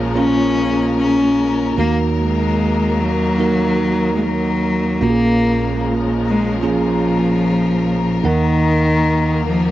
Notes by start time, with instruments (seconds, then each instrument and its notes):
Already playing: tine electric piano A#1 A#2 A#3 C#4 F4 G#4, string section A#2 F3 G#3 C#4 A#4
0.15 tine electric piano A#3 C#4 F4 A#4, cello C#4
0.97 cello C#4
1.77 tine electric piano D#2 D#3 A#3 D#4 F#4 A#4, string section D#2 D#3 F#3 A#3, cello A#3
2.18 cello G#3
2.99 cello F#3
3.38 tine electric piano A#3 D#4 F#4 A#4
4.15 cello G#3
4.22 cello F#3
5.01 tine electric piano A#1 A#2 A#3 C#4 F4 F#4, string section A#2 F3 G#3 C#4 A#4, cello A#3
5.09 tine electric piano G#4
6.26 cello G#3
6.62 tine electric piano A#3 C#4 F4 G#4
6.67 cello F3
8.23 tine electric piano D#2 D#3 A#3 D#4 A#4 F#5, string section D#2 D#3 A#3, cello D#3
9.46 cello F3